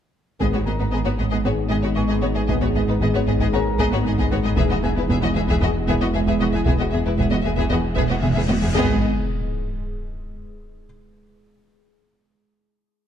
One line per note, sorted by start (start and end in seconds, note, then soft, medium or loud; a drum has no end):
0.40 0.46 G#1 soft
0.40 4.59 G#1 medium
0.40 0.46 G#2 soft
0.40 4.54 G#3 medium
0.40 0.58 B3 soft
0.40 0.46 B3 soft
0.40 4.54 B3 medium
0.40 4.54 D#4 medium
0.40 0.45 G#4 soft
0.40 0.59 G#4 soft
0.40 4.54 G#4 medium
0.40 0.46 D#5 soft
0.40 taiko medium
0.53 0.59 G#2 soft
0.53 0.59 B3 soft
0.53 0.58 F#4 soft
0.53 0.59 C#5 soft
0.66 0.72 G#1 soft
0.66 0.72 G#2 soft
0.66 0.72 B3 soft
0.66 0.71 G#4 soft
0.66 2.19 A#4 soft
0.66 0.72 D#5 soft
0.66 2.19 A#5 soft
0.79 0.85 G#2 soft
0.79 0.84 B3 soft
0.79 0.84 D#4 soft
0.79 0.85 B4 soft
0.91 0.98 G#1 soft
0.91 0.98 G#2 soft
0.91 0.97 B3 medium
0.91 0.98 G#4 medium
0.91 0.96 D#5 medium
1.05 1.11 G#2 soft
1.05 1.11 B3 soft
1.05 1.10 F#4 soft
1.05 1.10 C#5 soft
1.18 1.25 G#1 soft
1.18 1.24 G#2 soft
1.18 1.24 B3 soft
1.18 1.24 G#4 soft
1.18 1.24 D#5 soft
1.18 taiko soft
1.30 1.37 G#2 medium
1.30 1.37 B3 soft
1.30 1.36 G#4 medium
1.30 1.36 D#5 medium
1.45 1.51 G#1 soft
1.45 1.50 G#2 soft
1.45 1.63 B3 soft
1.45 1.50 B3 soft
1.45 1.50 F#4 soft
1.45 1.63 G#4 soft
1.45 1.50 C#5 soft
1.69 1.76 G#1 soft
1.69 1.75 G#2 soft
1.69 1.75 B3 soft
1.69 1.75 G#4 medium
1.69 1.75 D#5 medium
1.82 1.88 G#2 soft
1.82 1.89 B3 soft
1.82 1.89 F#4 soft
1.82 1.88 C#5 soft
1.95 2.03 G#1 soft
1.95 2.02 G#2 soft
1.95 2.02 B3 soft
1.95 2.01 G#4 soft
1.95 2.00 D#5 soft
1.95 3.49 C#6 soft
2.08 2.15 G#2 medium
2.08 2.15 B3 soft
2.08 2.14 G#4 soft
2.08 2.13 D#5 soft
2.21 2.28 G#1 soft
2.21 2.28 G#2 soft
2.21 2.28 B3 soft
2.21 2.27 F#4 soft
2.21 2.27 C#5 soft
2.35 2.40 G#2 soft
2.35 2.41 B3 soft
2.35 2.40 G#4 soft
2.35 2.40 D#5 soft
2.47 2.54 G#1 medium
2.47 2.53 G#2 medium
2.47 2.67 B3 soft
2.47 2.54 B3 medium
2.47 2.54 G#4 medium
2.47 2.67 G#4 medium
2.47 2.53 D#5 soft
2.47 taiko medium
2.61 2.66 G#2 soft
2.61 2.67 B3 soft
2.61 2.66 F#4 soft
2.61 2.67 C#5 soft
2.74 2.80 G#1 soft
2.74 2.80 G#2 soft
2.74 2.81 B3 soft
2.74 2.80 G#4 soft
2.74 2.81 D#5 soft
2.87 2.93 G#2 soft
2.87 2.93 B3 soft
2.87 2.93 D#4 soft
2.87 2.94 B4 soft
3.00 3.06 G#1 medium
3.00 3.06 G#2 medium
3.00 3.06 B3 medium
3.00 3.06 G#4 medium
3.00 3.07 D#5 medium
3.00 taiko medium
3.14 3.19 G#2 soft
3.14 3.19 B3 soft
3.14 3.19 F#4 soft
3.14 3.20 C#5 medium
3.26 3.33 G#1 soft
3.26 3.32 G#2 soft
3.26 3.33 B3 soft
3.26 3.32 G#4 soft
3.26 3.33 D#5 soft
3.39 3.45 G#2 medium
3.39 3.46 B3 medium
3.39 3.45 G#4 medium
3.39 3.46 D#5 medium
3.39 taiko medium
3.52 3.59 G#1 soft
3.52 3.58 G#2 soft
3.52 3.71 B3 medium
3.52 3.59 B3 soft
3.52 3.58 F#4 soft
3.52 3.71 G#4 medium
3.52 5.06 A#4 soft
3.52 3.59 C#5 medium
3.52 5.06 A#5 soft
3.78 3.85 G#1 medium
3.78 3.83 G#2 medium
3.78 3.84 B3 medium
3.78 3.84 G#4 medium
3.78 3.85 D#5 medium
3.78 taiko medium
3.91 3.97 G#2 soft
3.91 3.97 B3 soft
3.91 3.97 F#4 medium
3.91 3.98 C#5 soft
4.04 4.11 G#1 medium
4.04 4.10 G#2 soft
4.04 4.09 B3 soft
4.04 4.11 G#4 medium
4.04 4.12 D#5 soft
4.17 4.22 G#2 medium
4.17 4.23 B3 medium
4.17 4.24 G#4 medium
4.17 4.24 D#5 medium
4.17 taiko medium
4.30 4.36 G#1 medium
4.30 4.36 G#2 soft
4.30 4.36 B3 medium
4.30 4.37 F#4 medium
4.30 4.37 C#5 soft
4.44 4.49 G#2 soft
4.44 4.50 B3 medium
4.44 4.50 G#4 medium
4.44 4.49 D#5 medium
4.56 8.75 E1 medium
4.56 4.63 E1 medium
4.56 4.62 E2 medium
4.56 8.70 G#3 medium
4.56 4.62 B3 medium
4.56 4.75 B3 medium
4.56 8.71 B3 medium
4.56 8.74 E4 medium
4.56 4.75 G#4 medium
4.56 8.71 G#4 medium
4.56 4.63 G#4 medium
4.56 4.62 E5 medium
4.56 taiko medium
4.69 4.75 E2 soft
4.69 4.75 B3 medium
4.69 4.76 F#4 soft
4.69 4.76 D#5 soft
4.83 4.89 E1 soft
4.83 4.88 E2 soft
4.83 4.88 B3 soft
4.83 4.89 G#4 soft
4.83 4.89 E5 soft
4.83 6.36 G#5 soft
4.96 5.01 E2 medium
4.96 5.01 B3 soft
4.96 5.02 E4 soft
4.96 5.02 B4 soft
5.09 5.15 E1 medium
5.09 5.14 E2 medium
5.09 5.14 B3 medium
5.09 5.15 G#4 medium
5.09 5.15 E5 medium
5.09 taiko medium
5.21 5.27 E2 medium
5.21 5.27 B3 soft
5.21 5.28 F#4 soft
5.21 5.28 D#5 medium
5.35 5.41 E1 soft
5.35 5.40 E2 medium
5.35 5.40 B3 soft
5.35 5.40 G#4 medium
5.35 5.41 E5 medium
5.48 5.54 E2 medium
5.48 5.53 B3 medium
5.48 5.54 G#4 medium
5.48 5.54 E5 medium
5.48 taiko medium
5.61 5.67 E1 soft
5.61 5.67 E2 medium
5.61 5.67 B3 soft
5.61 5.80 B3 medium
5.61 5.67 F#4 medium
5.61 5.80 G#4 medium
5.61 5.67 D#5 medium
5.88 5.93 E1 medium
5.88 5.93 E2 medium
5.88 5.93 B3 medium
5.88 5.94 G#4 medium
5.88 5.93 E5 medium
5.88 taiko medium
6.01 6.06 E2 soft
6.01 6.06 B3 soft
6.01 6.07 F#4 medium
6.01 6.06 D#5 soft
6.13 6.20 E1 medium
6.13 6.19 E2 soft
6.13 6.19 B3 soft
6.13 6.20 G#4 medium
6.13 6.19 E5 medium
6.27 6.32 E2 medium
6.27 6.32 B3 medium
6.27 6.33 G#4 medium
6.27 6.32 E5 medium
6.27 taiko medium
6.40 6.46 E1 soft
6.40 6.45 E2 soft
6.40 6.45 B3 soft
6.40 6.46 F#4 soft
6.40 6.45 D#5 soft
6.53 6.58 E2 soft
6.53 6.58 B3 soft
6.53 6.59 G#4 medium
6.53 6.58 E5 soft
6.65 6.72 E1 medium
6.65 6.71 E2 medium
6.65 6.71 B3 medium
6.65 6.85 B3 medium
6.65 6.84 G#4 medium
6.65 6.72 G#4 medium
6.65 6.71 E5 soft
6.65 taiko medium
6.65 cymbal swell soft
6.78 6.85 E2 soft
6.78 6.84 B3 soft
6.78 6.85 F#4 soft
6.78 6.84 D#5 soft
6.91 6.99 E1 soft
6.91 6.98 E2 soft
6.91 6.98 B3 soft
6.91 6.98 G#4 soft
6.91 6.97 E5 soft
7.05 7.11 E2 soft
7.05 7.11 B3 soft
7.05 7.11 E4 soft
7.05 7.11 B4 soft
7.17 7.24 E1 medium
7.17 7.24 E2 medium
7.17 7.23 B3 medium
7.17 7.24 G#4 medium
7.17 7.23 E5 medium
7.17 taiko medium
7.30 7.37 E2 soft
7.30 7.36 B3 soft
7.30 7.37 F#4 soft
7.30 7.36 D#5 medium
7.43 7.50 E1 soft
7.43 7.50 E2 medium
7.43 7.49 B3 soft
7.43 7.50 G#4 medium
7.43 7.49 E5 soft
7.57 7.63 E2 medium
7.57 7.62 B3 medium
7.57 7.63 G#4 medium
7.57 7.62 E5 medium
7.57 taiko medium
7.70 7.76 E1 soft
7.70 7.76 E2 medium
7.70 7.75 B3 medium
7.70 7.88 B3 medium
7.70 7.77 F#4 soft
7.70 7.88 G#4 medium
7.70 7.75 D#5 medium
7.70 taiko low medium
7.94 8.03 E1 medium
7.94 8.02 E2 medium
7.94 8.01 B3 medium
7.94 8.02 G#4 medium
7.94 8.00 E5 medium
7.94 taiko medium
8.08 8.15 E2 soft
8.08 8.15 B3 soft
8.08 8.16 F#4 soft
8.08 8.13 D#5 soft
8.21 8.29 E1 soft
8.21 8.28 E2 soft
8.21 8.28 B3 soft
8.21 8.28 G#4 medium
8.21 8.27 E5 soft
8.21 taiko mid medium
8.33 8.41 E2 medium
8.33 8.42 B3 medium
8.33 8.41 G#4 medium
8.33 8.39 E5 medium
8.33 taiko mid medium
8.47 8.55 E1 soft
8.47 8.54 E2 soft
8.47 8.55 B3 medium
8.47 8.54 F#4 soft
8.47 8.53 D#5 soft
8.47 taiko high medium
8.60 8.67 E2 soft
8.60 8.69 B3 medium
8.60 8.67 G#4 medium
8.60 8.66 E5 soft
8.60 taiko low medium
8.73 9.04 G#1 medium
8.73 9.04 G#2 medium
8.73 8.96 B3 medium
8.73 9.05 B3 medium
8.73 8.96 G#4 medium
8.73 9.04 G#4 medium
8.73 9.03 D#5 medium
8.73 sub drop medium